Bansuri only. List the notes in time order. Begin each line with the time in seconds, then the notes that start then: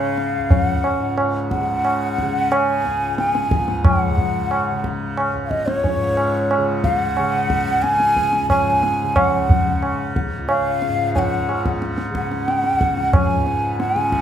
Already playing: F5
0.52 F5
0.64 F#5
1.50 F#5
2.52 G#5
3.19 G#5
3.85 F#5
5.45 F5
5.50 D#5
5.66 C#5
6.84 F5
6.96 F#5
7.82 G#5
8.50 G#5
9.17 F#5
10.49 F5
11.15 F#5 G#5
12.16 F#5
13.16 G#5
13.80 F#5
13.99 G#5